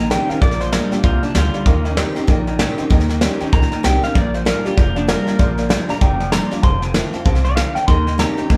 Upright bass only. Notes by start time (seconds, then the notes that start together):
Already playing: A#1
0.30 muted upright bass stroke
0.42 A#1
0.92 muted upright bass stroke
1.04 C2
1.35 D2
1.66 D#2
2.16 muted upright bass stroke
2.28 A#1
2.79 muted upright bass stroke
2.90 D#2
3.41 muted upright bass stroke
3.53 C#2
3.72 muted upright bass stroke
3.84 C2
4.03 muted upright bass stroke
4.15 A#1
4.65 muted upright bass stroke
4.78 F1
5.28 muted upright bass stroke
5.39 A#1
5.90 muted upright bass stroke
6.01 F1
6.52 muted upright bass stroke
6.63 F1
7.14 muted upright bass stroke
7.26 C2
7.76 muted upright bass stroke
7.88 D#2
8.38 muted upright bass stroke
8.50 A#1